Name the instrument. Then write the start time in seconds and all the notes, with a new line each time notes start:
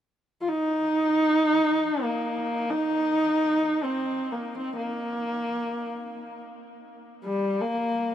horsehead fiddle
0.41 F4
0.49 D#4
2.02 A#3
2.70 D#4
3.83 C4
4.32 A#3
4.55 C4
4.76 A#3
7.24 G3
7.61 A#3